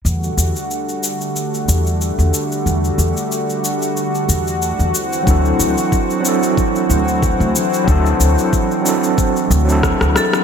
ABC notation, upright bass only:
X:1
M:4/4
L:1/16
Q:"Swing 16ths" 1/4=92
K:Em
V:1 name="Upright bass" clef=bass
E,,2 E,, z6 z E,,3 E,, z2 | E,,2 E,, z6 z E,,3 E,, z2 | D,,2 D,, z6 z D,,3 D,, z2 | D,,2 D,, z6 z D,,3 D,, z2 |]